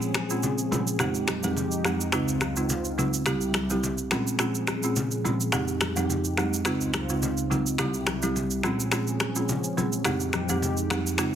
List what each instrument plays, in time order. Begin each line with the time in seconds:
Already playing: analog synth pad A#2 F3 C4 C#4 G#4
0.02 shaker
0.14 finger snap, cross-stick, high conga, shaker
0.30 marimba A#2 G#3 C4 C#4 F4, shaker
0.43 low conga, shaker
0.58 shaker
0.71 marimba A#2 G#3 C4 C#4 F4, high conga, low conga, shaker
0.87 shaker
0.99 marimba F2 G#3 C4 D#4 G4, analog synth pad F2 G#3 D#4 G4, finger snap, cross-stick, low conga, shaker
1.15 shaker
1.28 finger snap, cross-stick, high conga, shaker
1.43 marimba F2 G#3 C4 D#4 G4, high conga, shaker
1.57 low conga, shaker
1.72 shaker
1.85 marimba F2 G#3 C4 D#4 G4, finger snap, cross-stick, high conga, shaker
2.01 shaker
2.12 analog synth pad C#2 C#3 C4 F4, marimba C#3 G#3 C4 D#4 F4, finger snap, cross-stick, shaker
2.28 shaker
2.41 finger snap, cross-stick, high conga, shaker
2.56 marimba C#3 G#3 C4 D#4 F4, shaker
2.69 low conga, shaker
2.85 shaker
2.98 marimba C#3 G#3 C4 D#4 F4, high conga, low conga, shaker
3.14 shaker
3.26 analog synth pad C2 C3 G3 E4 G4, marimba G3 C4 E4 G4, finger snap, cross-stick, low conga, shaker
3.41 shaker
3.54 finger snap, cross-stick, high conga, shaker
3.70 marimba G3 C4 E4 G4, high conga, shaker
3.83 low conga, shaker
3.98 shaker
4.11 analog synth pad A#2 F3 C4 C#4 G#4, marimba A#2 G#3 C4 C#4 F4, finger snap, cross-stick, high conga, shaker
4.27 shaker
4.39 marimba A#2 G#3 C4 C#4 F4, finger snap, cross-stick, shaker
4.55 shaker
4.67 finger snap, cross-stick, high conga, shaker
4.83 marimba A#2 G#3 C4 C#4 F4, shaker
4.96 low conga, shaker
5.11 shaker
5.24 marimba A#2 G#3 C4 C#4 F4, high conga, low conga, shaker
5.41 shaker
5.52 marimba F2 G#3 C4 D#4 G4, analog synth pad F2 G#3 D#4 G4, finger snap, cross-stick, low conga, shaker
5.68 shaker
5.81 finger snap, cross-stick, high conga, shaker
5.96 marimba F2 G#3 C4 D#4 G4, high conga, shaker
6.10 low conga, shaker
6.25 shaker
6.37 marimba F2 G#3 C4 D#4 G4, finger snap, cross-stick, high conga, shaker
6.54 shaker
6.65 analog synth pad C#2 C#3 C4 F4, marimba C#3 G#3 C4 D#4 F4, finger snap, cross-stick, shaker
6.81 shaker
6.94 finger snap, cross-stick, high conga, shaker
7.09 marimba C#3 G#3 C4 D#4 F4, shaker
7.23 low conga, shaker
7.38 shaker
7.50 marimba C#3 G#3 C4 D#4 F4, high conga, low conga, shaker
7.67 shaker
7.78 analog synth pad C2 C3 G3 E4 G4, marimba G3 C4 E4 G4, finger snap, cross-stick, low conga, shaker
7.94 shaker
8.07 finger snap, cross-stick, high conga, shaker
8.22 marimba G3 C4 E4 G4, high conga, shaker
8.36 low conga, shaker
8.51 shaker
8.63 marimba A#2 G#3 C4 C#4 F4, analog synth pad A#2 F3 C4 C#4 G#4, finger snap, cross-stick, high conga, shaker
8.80 shaker
8.92 marimba A#2 G#3 C4 C#4 F4, finger snap, cross-stick, shaker
9.07 shaker
9.20 finger snap, cross-stick, high conga, shaker
9.36 marimba A#2 G#3 C4 C#4 F4, shaker
9.49 low conga, shaker
9.64 shaker
9.77 marimba A#2 G#3 C4 C#4 F4, high conga, low conga, shaker
9.93 shaker
10.05 marimba F2 G#3 C4 D#4 G4, analog synth pad F2 G#3 D#4 G4, finger snap, cross-stick, low conga, shaker
10.20 shaker
10.33 finger snap, cross-stick, high conga, shaker
10.49 marimba F2 G#3 C4 D#4 G4, high conga, shaker
10.62 low conga, shaker
10.77 shaker
10.90 marimba F2 G#3 C4 D#4 G4, finger snap, cross-stick, high conga, shaker
11.07 shaker
11.18 analog synth pad C#2 C#3 C4 D#4 F4, marimba C#3 G#3 C4 D#4 F4, finger snap, cross-stick, shaker